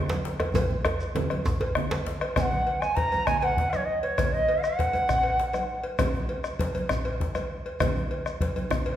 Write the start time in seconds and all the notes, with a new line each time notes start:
0.09 cowbell, djembe slap, high conga, shekere
0.25 djembe slap
0.40 bombo rim, cowbell, djembe tone, high conga
0.54 bombo low, cowbell, djembe tone, low conga, djembe bass, shekere
0.70 djembe slap, high conga
0.85 bombo rim, cowbell, djembe slap, djembe tone, shekere
1.00 djembe slap, shekere
1.15 bombo rim, bombo low, cowbell, djembe slap, djembe tone, high conga, low conga
1.30 bombo rim, cowbell, djembe tone, high conga
1.46 djembe tone, djembe bass, shekere
1.61 cowbell, djembe tone, high conga
1.75 bombo rim, djembe tone, low conga
1.91 cowbell, djembe slap, high conga, shekere
2.06 bombo rim, djembe slap
2.21 bombo rim, cowbell, high conga
2.36 G#5, bombo rim, bombo low, cowbell, djembe slap, low conga, djembe bass, shekere
2.41 F#5
2.52 high conga, djembe tone
2.67 cowbell, djembe slap, high conga
2.80 G#5, bombo rim, shekere
2.96 A#5, bombo low, cowbell, djembe slap, high conga
3.12 cowbell, high conga, djembe tone, shekere
3.26 G#5, bombo rim, djembe slap, djembe bass, low conga, shekere
3.40 F#5 G#5, cowbell, high conga
3.57 bombo low, djembe slap
3.71 C#5, bombo rim, cowbell, high conga, djembe tone, shekere
3.85 D#5, high conga
4.02 C#5, bombo rim, cowbell
4.18 bombo rim, bombo low, cowbell, djembe slap, low conga, djembe bass, shekere
4.33 D#5, high conga, djembe tone
4.49 cowbell, djembe slap, high conga
4.62 F#5, bombo rim, shekere
4.79 bombo low, cowbell, djembe slap
4.93 cowbell, high conga, djembe tone, shekere
5.09 bombo rim, djembe slap, low conga, djembe bass, shekere
5.23 cowbell, high conga
5.39 djembe slap
5.53 bombo rim, cowbell, high conga, djembe tone, shekere
5.69 high conga
5.84 bombo rim, cowbell
5.99 bombo rim, bombo low, cowbell, djembe slap, low conga, djembe bass, shekere
6.14 high conga, djembe tone
6.29 cowbell, djembe slap, high conga
6.44 bombo rim, shekere
6.59 bombo low, cowbell, djembe slap
6.74 cowbell, high conga, djembe tone, shekere
6.89 bombo rim, djembe slap, low conga, djembe bass, shekere
7.05 cowbell, high conga
7.20 bombo low, djembe slap
7.35 bombo rim, cowbell, high conga, djembe tone, shekere
7.50 high conga
7.66 bombo rim, cowbell
7.80 bombo rim, bombo low, cowbell, djembe slap, low conga, djembe bass, shekere
7.96 high conga, djembe tone
8.11 cowbell, djembe slap, high conga
8.26 bombo rim, shekere
8.41 bombo low, cowbell, djembe slap
8.56 bombo rim, cowbell, high conga, djembe tone
8.71 bombo rim, low conga, djembe bass, shekere
8.86 cowbell